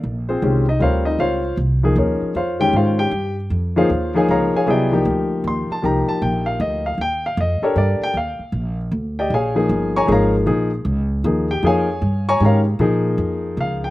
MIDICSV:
0, 0, Header, 1, 4, 480
1, 0, Start_track
1, 0, Tempo, 386847
1, 38, Time_signature, 3, 2, 24, 8
1, 17250, End_track
2, 0, Start_track
2, 0, Title_t, "Grand piano"
2, 0, Program_c, 0, 0
2, 355, Note_on_c, 0, 72, 66
2, 360, Note_on_c, 0, 65, 49
2, 369, Note_on_c, 0, 68, 53
2, 371, Note_on_c, 0, 60, 55
2, 524, Note_on_c, 0, 51, 58
2, 531, Note_on_c, 0, 56, 50
2, 540, Note_on_c, 0, 61, 49
2, 541, Note_on_c, 0, 67, 62
2, 798, Note_off_c, 0, 72, 0
2, 801, Note_off_c, 0, 51, 0
2, 801, Note_off_c, 0, 65, 0
2, 805, Note_off_c, 0, 56, 0
2, 806, Note_off_c, 0, 68, 0
2, 807, Note_off_c, 0, 60, 0
2, 809, Note_off_c, 0, 61, 0
2, 810, Note_off_c, 0, 67, 0
2, 851, Note_on_c, 0, 63, 53
2, 856, Note_on_c, 0, 75, 71
2, 982, Note_on_c, 0, 55, 55
2, 989, Note_on_c, 0, 60, 44
2, 997, Note_on_c, 0, 65, 46
2, 1002, Note_off_c, 0, 63, 0
2, 1004, Note_off_c, 0, 75, 0
2, 1004, Note_on_c, 0, 70, 59
2, 1018, Note_on_c, 0, 72, 64
2, 1019, Note_on_c, 0, 77, 74
2, 1026, Note_on_c, 0, 73, 60
2, 1308, Note_on_c, 0, 75, 76
2, 1310, Note_off_c, 0, 72, 0
2, 1311, Note_off_c, 0, 77, 0
2, 1314, Note_off_c, 0, 73, 0
2, 1323, Note_on_c, 0, 63, 61
2, 1469, Note_off_c, 0, 75, 0
2, 1473, Note_off_c, 0, 65, 0
2, 1477, Note_off_c, 0, 63, 0
2, 1487, Note_on_c, 0, 77, 83
2, 1488, Note_on_c, 0, 72, 65
2, 1491, Note_on_c, 0, 65, 59
2, 1495, Note_on_c, 0, 73, 65
2, 1718, Note_off_c, 0, 55, 0
2, 1721, Note_off_c, 0, 60, 0
2, 1729, Note_off_c, 0, 70, 0
2, 1927, Note_off_c, 0, 72, 0
2, 1927, Note_off_c, 0, 77, 0
2, 1929, Note_off_c, 0, 65, 0
2, 1931, Note_off_c, 0, 73, 0
2, 2274, Note_on_c, 0, 53, 62
2, 2282, Note_on_c, 0, 58, 57
2, 2282, Note_on_c, 0, 63, 60
2, 2293, Note_on_c, 0, 68, 72
2, 2445, Note_off_c, 0, 68, 0
2, 2460, Note_on_c, 0, 70, 39
2, 2463, Note_on_c, 0, 61, 41
2, 2463, Note_on_c, 0, 73, 52
2, 2464, Note_on_c, 0, 68, 43
2, 2882, Note_off_c, 0, 53, 0
2, 2886, Note_off_c, 0, 58, 0
2, 2886, Note_off_c, 0, 63, 0
2, 2892, Note_off_c, 0, 70, 0
2, 2894, Note_off_c, 0, 73, 0
2, 2895, Note_off_c, 0, 61, 0
2, 2895, Note_off_c, 0, 68, 0
2, 2933, Note_on_c, 0, 65, 54
2, 2935, Note_on_c, 0, 77, 72
2, 2938, Note_on_c, 0, 72, 57
2, 2939, Note_on_c, 0, 73, 57
2, 3224, Note_on_c, 0, 51, 63
2, 3226, Note_off_c, 0, 65, 0
2, 3227, Note_off_c, 0, 77, 0
2, 3229, Note_off_c, 0, 72, 0
2, 3229, Note_off_c, 0, 73, 0
2, 3232, Note_on_c, 0, 56, 57
2, 3234, Note_on_c, 0, 79, 90
2, 3239, Note_on_c, 0, 67, 73
2, 3243, Note_on_c, 0, 61, 57
2, 3391, Note_off_c, 0, 79, 0
2, 3393, Note_off_c, 0, 67, 0
2, 3423, Note_on_c, 0, 65, 54
2, 3429, Note_on_c, 0, 73, 53
2, 3429, Note_on_c, 0, 77, 70
2, 3432, Note_on_c, 0, 72, 54
2, 3711, Note_off_c, 0, 65, 0
2, 3711, Note_on_c, 0, 79, 89
2, 3714, Note_off_c, 0, 73, 0
2, 3714, Note_off_c, 0, 77, 0
2, 3714, Note_on_c, 0, 67, 69
2, 3715, Note_off_c, 0, 72, 0
2, 3837, Note_off_c, 0, 51, 0
2, 3841, Note_off_c, 0, 56, 0
2, 3846, Note_off_c, 0, 61, 0
2, 4153, Note_off_c, 0, 79, 0
2, 4155, Note_off_c, 0, 67, 0
2, 4668, Note_on_c, 0, 53, 70
2, 4671, Note_on_c, 0, 58, 72
2, 4676, Note_on_c, 0, 63, 63
2, 4685, Note_on_c, 0, 65, 59
2, 4685, Note_on_c, 0, 68, 77
2, 4685, Note_on_c, 0, 73, 54
2, 4686, Note_on_c, 0, 77, 76
2, 4687, Note_on_c, 0, 72, 58
2, 4815, Note_off_c, 0, 53, 0
2, 4816, Note_off_c, 0, 58, 0
2, 4819, Note_off_c, 0, 63, 0
2, 4824, Note_off_c, 0, 68, 0
2, 5120, Note_off_c, 0, 65, 0
2, 5120, Note_off_c, 0, 73, 0
2, 5121, Note_off_c, 0, 72, 0
2, 5121, Note_off_c, 0, 77, 0
2, 5142, Note_on_c, 0, 53, 68
2, 5150, Note_on_c, 0, 58, 65
2, 5156, Note_on_c, 0, 63, 69
2, 5162, Note_on_c, 0, 68, 73
2, 5173, Note_on_c, 0, 77, 58
2, 5177, Note_on_c, 0, 73, 54
2, 5180, Note_on_c, 0, 80, 72
2, 5319, Note_off_c, 0, 77, 0
2, 5321, Note_off_c, 0, 73, 0
2, 5323, Note_off_c, 0, 80, 0
2, 5342, Note_on_c, 0, 77, 63
2, 5345, Note_on_c, 0, 82, 76
2, 5350, Note_on_c, 0, 70, 63
2, 5350, Note_on_c, 0, 73, 67
2, 5629, Note_off_c, 0, 77, 0
2, 5630, Note_off_c, 0, 82, 0
2, 5633, Note_off_c, 0, 70, 0
2, 5633, Note_off_c, 0, 73, 0
2, 5649, Note_off_c, 0, 68, 0
2, 5663, Note_on_c, 0, 80, 75
2, 5667, Note_on_c, 0, 73, 61
2, 5668, Note_on_c, 0, 68, 60
2, 5672, Note_on_c, 0, 77, 59
2, 5755, Note_off_c, 0, 53, 0
2, 5759, Note_off_c, 0, 58, 0
2, 5762, Note_off_c, 0, 63, 0
2, 5786, Note_on_c, 0, 54, 63
2, 5788, Note_off_c, 0, 68, 0
2, 5789, Note_on_c, 0, 59, 64
2, 5798, Note_on_c, 0, 64, 65
2, 5804, Note_off_c, 0, 80, 0
2, 5806, Note_off_c, 0, 73, 0
2, 5807, Note_on_c, 0, 68, 74
2, 5809, Note_off_c, 0, 77, 0
2, 5829, Note_on_c, 0, 75, 53
2, 5834, Note_on_c, 0, 74, 51
2, 5837, Note_on_c, 0, 79, 71
2, 5838, Note_on_c, 0, 67, 57
2, 6069, Note_off_c, 0, 54, 0
2, 6070, Note_off_c, 0, 59, 0
2, 6074, Note_off_c, 0, 64, 0
2, 6079, Note_off_c, 0, 68, 0
2, 6102, Note_on_c, 0, 53, 66
2, 6104, Note_off_c, 0, 67, 0
2, 6110, Note_on_c, 0, 58, 60
2, 6118, Note_on_c, 0, 63, 58
2, 6123, Note_on_c, 0, 67, 74
2, 6256, Note_off_c, 0, 75, 0
2, 6258, Note_off_c, 0, 74, 0
2, 6260, Note_off_c, 0, 79, 0
2, 6794, Note_on_c, 0, 84, 77
2, 7075, Note_off_c, 0, 84, 0
2, 7096, Note_on_c, 0, 81, 82
2, 7127, Note_off_c, 0, 53, 0
2, 7131, Note_off_c, 0, 58, 0
2, 7135, Note_off_c, 0, 63, 0
2, 7138, Note_off_c, 0, 67, 0
2, 7224, Note_on_c, 0, 53, 57
2, 7230, Note_on_c, 0, 58, 56
2, 7240, Note_off_c, 0, 81, 0
2, 7240, Note_on_c, 0, 63, 53
2, 7244, Note_on_c, 0, 67, 65
2, 7262, Note_on_c, 0, 82, 83
2, 7549, Note_off_c, 0, 82, 0
2, 7551, Note_on_c, 0, 81, 86
2, 7707, Note_off_c, 0, 81, 0
2, 7719, Note_on_c, 0, 79, 75
2, 8016, Note_off_c, 0, 79, 0
2, 8016, Note_on_c, 0, 77, 77
2, 8179, Note_off_c, 0, 77, 0
2, 8199, Note_on_c, 0, 75, 75
2, 8497, Note_off_c, 0, 75, 0
2, 8513, Note_on_c, 0, 77, 74
2, 8565, Note_off_c, 0, 53, 0
2, 8567, Note_off_c, 0, 58, 0
2, 8572, Note_off_c, 0, 63, 0
2, 8574, Note_off_c, 0, 67, 0
2, 8668, Note_off_c, 0, 77, 0
2, 8702, Note_on_c, 0, 79, 92
2, 8988, Note_off_c, 0, 79, 0
2, 9009, Note_on_c, 0, 77, 78
2, 9156, Note_off_c, 0, 77, 0
2, 9189, Note_on_c, 0, 75, 74
2, 9464, Note_on_c, 0, 69, 63
2, 9469, Note_on_c, 0, 62, 61
2, 9471, Note_on_c, 0, 73, 73
2, 9472, Note_off_c, 0, 75, 0
2, 9473, Note_on_c, 0, 67, 61
2, 9483, Note_on_c, 0, 70, 73
2, 9627, Note_off_c, 0, 73, 0
2, 9651, Note_on_c, 0, 74, 75
2, 9943, Note_off_c, 0, 74, 0
2, 9970, Note_on_c, 0, 79, 94
2, 10075, Note_off_c, 0, 69, 0
2, 10078, Note_off_c, 0, 62, 0
2, 10080, Note_off_c, 0, 67, 0
2, 10085, Note_off_c, 0, 70, 0
2, 10117, Note_off_c, 0, 79, 0
2, 10139, Note_on_c, 0, 77, 76
2, 10867, Note_off_c, 0, 77, 0
2, 11402, Note_on_c, 0, 79, 69
2, 11410, Note_on_c, 0, 74, 62
2, 11414, Note_on_c, 0, 75, 60
2, 11416, Note_on_c, 0, 67, 65
2, 11553, Note_off_c, 0, 79, 0
2, 11557, Note_off_c, 0, 74, 0
2, 11559, Note_off_c, 0, 75, 0
2, 11561, Note_off_c, 0, 67, 0
2, 11588, Note_on_c, 0, 80, 77
2, 11592, Note_on_c, 0, 73, 54
2, 11595, Note_on_c, 0, 68, 57
2, 11595, Note_on_c, 0, 77, 58
2, 11847, Note_off_c, 0, 68, 0
2, 11847, Note_on_c, 0, 53, 60
2, 11857, Note_on_c, 0, 58, 58
2, 11860, Note_on_c, 0, 63, 54
2, 11865, Note_on_c, 0, 68, 70
2, 12312, Note_off_c, 0, 80, 0
2, 12314, Note_off_c, 0, 73, 0
2, 12315, Note_off_c, 0, 77, 0
2, 12364, Note_on_c, 0, 85, 92
2, 12367, Note_on_c, 0, 73, 79
2, 12374, Note_on_c, 0, 82, 79
2, 12377, Note_on_c, 0, 80, 81
2, 12468, Note_off_c, 0, 53, 0
2, 12473, Note_off_c, 0, 58, 0
2, 12475, Note_off_c, 0, 63, 0
2, 12477, Note_off_c, 0, 68, 0
2, 12492, Note_on_c, 0, 53, 65
2, 12496, Note_on_c, 0, 58, 61
2, 12502, Note_on_c, 0, 63, 60
2, 12511, Note_on_c, 0, 68, 70
2, 12515, Note_off_c, 0, 85, 0
2, 12516, Note_off_c, 0, 73, 0
2, 12520, Note_off_c, 0, 82, 0
2, 12522, Note_off_c, 0, 80, 0
2, 12555, Note_on_c, 0, 82, 80
2, 12559, Note_on_c, 0, 73, 60
2, 12562, Note_on_c, 0, 70, 62
2, 12563, Note_on_c, 0, 77, 60
2, 12836, Note_off_c, 0, 82, 0
2, 12839, Note_off_c, 0, 73, 0
2, 12840, Note_off_c, 0, 70, 0
2, 12841, Note_off_c, 0, 77, 0
2, 12961, Note_off_c, 0, 53, 0
2, 12964, Note_off_c, 0, 58, 0
2, 12970, Note_off_c, 0, 63, 0
2, 12975, Note_off_c, 0, 68, 0
2, 12980, Note_on_c, 0, 53, 65
2, 12982, Note_on_c, 0, 58, 59
2, 12989, Note_on_c, 0, 63, 58
2, 12993, Note_on_c, 0, 68, 76
2, 13267, Note_off_c, 0, 53, 0
2, 13268, Note_off_c, 0, 58, 0
2, 13271, Note_off_c, 0, 63, 0
2, 13273, Note_off_c, 0, 68, 0
2, 13951, Note_on_c, 0, 53, 54
2, 13952, Note_on_c, 0, 58, 49
2, 13961, Note_on_c, 0, 63, 50
2, 13972, Note_on_c, 0, 68, 56
2, 14233, Note_off_c, 0, 53, 0
2, 14234, Note_off_c, 0, 58, 0
2, 14238, Note_off_c, 0, 63, 0
2, 14244, Note_off_c, 0, 68, 0
2, 14280, Note_on_c, 0, 79, 88
2, 14291, Note_on_c, 0, 67, 63
2, 14431, Note_on_c, 0, 53, 62
2, 14435, Note_off_c, 0, 79, 0
2, 14440, Note_off_c, 0, 67, 0
2, 14440, Note_on_c, 0, 58, 56
2, 14441, Note_on_c, 0, 63, 57
2, 14452, Note_on_c, 0, 68, 70
2, 14469, Note_on_c, 0, 77, 63
2, 14475, Note_on_c, 0, 80, 86
2, 14486, Note_on_c, 0, 73, 65
2, 14714, Note_off_c, 0, 53, 0
2, 14718, Note_off_c, 0, 58, 0
2, 14719, Note_off_c, 0, 63, 0
2, 14724, Note_off_c, 0, 68, 0
2, 15196, Note_off_c, 0, 77, 0
2, 15198, Note_off_c, 0, 80, 0
2, 15204, Note_off_c, 0, 73, 0
2, 15245, Note_on_c, 0, 85, 102
2, 15248, Note_on_c, 0, 80, 83
2, 15252, Note_on_c, 0, 82, 78
2, 15255, Note_on_c, 0, 73, 84
2, 15393, Note_on_c, 0, 51, 52
2, 15393, Note_on_c, 0, 56, 54
2, 15398, Note_off_c, 0, 85, 0
2, 15400, Note_off_c, 0, 80, 0
2, 15402, Note_off_c, 0, 82, 0
2, 15402, Note_on_c, 0, 61, 49
2, 15403, Note_off_c, 0, 73, 0
2, 15407, Note_on_c, 0, 67, 57
2, 15445, Note_on_c, 0, 82, 74
2, 15447, Note_on_c, 0, 70, 68
2, 15455, Note_on_c, 0, 73, 69
2, 15458, Note_on_c, 0, 77, 66
2, 15618, Note_off_c, 0, 82, 0
2, 15620, Note_off_c, 0, 70, 0
2, 15625, Note_off_c, 0, 73, 0
2, 15627, Note_off_c, 0, 77, 0
2, 15676, Note_off_c, 0, 51, 0
2, 15676, Note_off_c, 0, 56, 0
2, 15680, Note_off_c, 0, 61, 0
2, 15683, Note_off_c, 0, 67, 0
2, 15879, Note_on_c, 0, 53, 71
2, 15887, Note_on_c, 0, 63, 67
2, 15888, Note_on_c, 0, 58, 61
2, 15896, Note_on_c, 0, 68, 76
2, 16881, Note_on_c, 0, 77, 76
2, 17164, Note_off_c, 0, 77, 0
2, 17175, Note_on_c, 0, 79, 76
2, 17220, Note_off_c, 0, 53, 0
2, 17224, Note_off_c, 0, 58, 0
2, 17224, Note_off_c, 0, 63, 0
2, 17228, Note_off_c, 0, 68, 0
2, 17250, Note_off_c, 0, 79, 0
2, 17250, End_track
3, 0, Start_track
3, 0, Title_t, "Upright bass"
3, 0, Program_c, 1, 32
3, 44, Note_on_c, 1, 34, 75
3, 505, Note_off_c, 1, 34, 0
3, 523, Note_on_c, 1, 36, 81
3, 984, Note_off_c, 1, 36, 0
3, 998, Note_on_c, 1, 38, 77
3, 1462, Note_off_c, 1, 38, 0
3, 1471, Note_on_c, 1, 37, 68
3, 1937, Note_off_c, 1, 37, 0
3, 1952, Note_on_c, 1, 36, 81
3, 2417, Note_off_c, 1, 36, 0
3, 2427, Note_on_c, 1, 39, 81
3, 2720, Note_off_c, 1, 39, 0
3, 2913, Note_on_c, 1, 41, 77
3, 3377, Note_off_c, 1, 41, 0
3, 3387, Note_on_c, 1, 44, 82
3, 3854, Note_off_c, 1, 44, 0
3, 3863, Note_on_c, 1, 43, 77
3, 4332, Note_off_c, 1, 43, 0
3, 4346, Note_on_c, 1, 41, 73
3, 4813, Note_off_c, 1, 41, 0
3, 4836, Note_on_c, 1, 39, 75
3, 5297, Note_off_c, 1, 39, 0
3, 5316, Note_on_c, 1, 37, 78
3, 5603, Note_off_c, 1, 37, 0
3, 5796, Note_on_c, 1, 36, 67
3, 6257, Note_off_c, 1, 36, 0
3, 6269, Note_on_c, 1, 38, 82
3, 6733, Note_off_c, 1, 38, 0
3, 6748, Note_on_c, 1, 39, 76
3, 7039, Note_off_c, 1, 39, 0
3, 7241, Note_on_c, 1, 36, 69
3, 7525, Note_off_c, 1, 36, 0
3, 7713, Note_on_c, 1, 34, 77
3, 8175, Note_off_c, 1, 34, 0
3, 8185, Note_on_c, 1, 38, 85
3, 8651, Note_off_c, 1, 38, 0
3, 8657, Note_on_c, 1, 39, 71
3, 9127, Note_off_c, 1, 39, 0
3, 9148, Note_on_c, 1, 41, 87
3, 9438, Note_off_c, 1, 41, 0
3, 9624, Note_on_c, 1, 43, 80
3, 9916, Note_off_c, 1, 43, 0
3, 10098, Note_on_c, 1, 39, 70
3, 10393, Note_off_c, 1, 39, 0
3, 10575, Note_on_c, 1, 34, 80
3, 11046, Note_off_c, 1, 34, 0
3, 11062, Note_on_c, 1, 38, 85
3, 11531, Note_off_c, 1, 38, 0
3, 11542, Note_on_c, 1, 34, 78
3, 12011, Note_off_c, 1, 34, 0
3, 12027, Note_on_c, 1, 31, 80
3, 12494, Note_off_c, 1, 31, 0
3, 12510, Note_on_c, 1, 32, 87
3, 12976, Note_off_c, 1, 32, 0
3, 12987, Note_on_c, 1, 34, 75
3, 13454, Note_off_c, 1, 34, 0
3, 13460, Note_on_c, 1, 37, 87
3, 13931, Note_off_c, 1, 37, 0
3, 13948, Note_on_c, 1, 39, 88
3, 14416, Note_off_c, 1, 39, 0
3, 14427, Note_on_c, 1, 41, 80
3, 14896, Note_off_c, 1, 41, 0
3, 14910, Note_on_c, 1, 43, 85
3, 15378, Note_off_c, 1, 43, 0
3, 15390, Note_on_c, 1, 44, 86
3, 15858, Note_off_c, 1, 44, 0
3, 15871, Note_on_c, 1, 46, 80
3, 16339, Note_off_c, 1, 46, 0
3, 16351, Note_on_c, 1, 41, 80
3, 16820, Note_off_c, 1, 41, 0
3, 16839, Note_on_c, 1, 37, 79
3, 17250, Note_off_c, 1, 37, 0
3, 17250, End_track
4, 0, Start_track
4, 0, Title_t, "Muted upright bass strokes"
4, 2750, Note_on_c, 9, 29, 37
4, 2874, Note_off_c, 9, 29, 0
4, 5630, Note_on_c, 9, 29, 35
4, 5754, Note_off_c, 9, 29, 0
4, 7073, Note_on_c, 9, 29, 35
4, 7197, Note_off_c, 9, 29, 0
4, 9457, Note_on_c, 9, 29, 40
4, 9581, Note_off_c, 9, 29, 0
4, 9927, Note_on_c, 9, 29, 37
4, 10051, Note_off_c, 9, 29, 0
4, 10413, Note_on_c, 9, 29, 38
4, 10537, Note_off_c, 9, 29, 0
4, 17250, End_track
0, 0, End_of_file